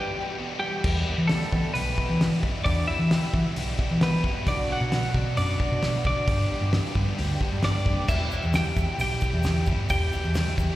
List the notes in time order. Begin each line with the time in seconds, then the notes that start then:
Already playing: E2 B2 E3 G3 B3 G4
0.17 E2 B2 E3 G3 B3 G4
0.39 E2 B2 E3 G3 B3 G4
0.60 E2 B2 E3 G3 G4
0.64 B3 G4
0.84 E2 B2 E3 G3 B3 E4 G4, kick, crash
1.06 E2 B2 E3 G3 B3 E4 G4
1.18 E3
1.27 E2 B2 E3 G3 A3 E4 G4 A4, snare, open hi-hat
1.32 B3
1.41 snare
1.51 E2 B2 E3 G3 E4 G4, kick
1.55 B3
1.74 B1 E2 B2 E3 G3 B3 E4 G4 B4, open hi-hat
1.97 E2 B2 E3 G3 B3 E4 G4, kick
2.10 E3
2.19 E2 B2 E3 G3 E4 G4, snare, open hi-hat
2.24 B3
2.42 E2 G2 B2 E3 G3 E4 G4, kick
2.46 B3
2.64 E2 B2 E3 G3 B3 D4 E4 G4 D5, kick, open hi-hat
2.87 E2 B2 E3 G3 B3 E4 G4 E5
2.99 E3
3.10 E2 B2 E3 G3 B3 E4 G4, snare, open hi-hat
3.22 snare
3.33 E2 B2 E3 G3 B3 E4 G4, kick
3.55 B1 E2 B2 E3 G3 B3 E4 G4, open hi-hat
3.77 E2 B2 E3 G3 B3 E4 G4, kick
3.91 E3
3.99 E2 B2 E3 G3 B3 E4 G4 B4, snare, open hi-hat
4.23 E2 G2 B2 E3 G3 B3 E4 G4, kick
4.46 B1 B2 F#3 B3 D4 F#4 D5, kick, open hi-hat
4.68 B2 F#3 B3 D4 F#4 F#5
4.81 B2
4.92 B2 F#3 B3 D4 F#4, snare, open hi-hat
5.13 B2 F#3 B3 D4 F#4, kick
5.36 F#2 B2 F#3 B3 D4 F#4 D5, open hi-hat
5.58 B2 F#3 B3 D4 F#4, kick
5.72 B2
5.80 B2 F#3 B3 D4 F#4, snare, open hi-hat
6.04 D2 B2 F#3 B3 D4 F#4 D5, kick
6.26 G1 G2 D3 G3 B3 D4 G4, kick, open hi-hat
6.49 G2 D3 G3 B3 D4 G4
6.61 G2
6.71 G2 D3 G3 B3 D4 G4, snare, open hi-hat
6.85 snare
6.94 G2 D3 G3 B3 D4 G4, kick
7.17 D2 G2 D3 G3 B3 D4 G4, open hi-hat
7.39 G2 D3 G3 B3 D4 G4, kick
7.52 G2
7.61 G2 D3 G3 B3 D4 G4 D5, snare, open hi-hat
7.84 F#1 G2 D3 G3 B3 D4 G4, kick
8.06 E1 E2 B2 E3 G3 E4 G4 E5, kick, crash, shaker
8.29 E2 B2 E3 G3 E4 G4, shaker
8.42 E2, shaker
8.52 E2 B2 E3 G3 E4 G4 G5, snare, open hi-hat, shaker
8.75 E2 B2 E3 G3 E4 G4, kick, shaker
8.98 B1 E2 B2 E3 G3 E4 G4 G5, open hi-hat, shaker
9.11 shaker
9.20 E2 B2 E3 G3 E4 G4, kick, shaker
9.33 E2
9.43 E2 B2 E3 G3 E4 G4, snare, open hi-hat, shaker
9.66 G1 E2 B2 E3 G3 E4 G4, kick, shaker
9.89 E1 E2 B2 E3 G3 E4 G4 G5, kick, open hi-hat, shaker
10.12 E2 B2 E3 G3 E4 G4, shaker
10.24 E2, shaker
10.34 E2 B2 E3 G3 E4 G4, snare, open hi-hat, shaker
10.47 snare
10.57 E2 B2 E3 G3 E4 G4, kick, shaker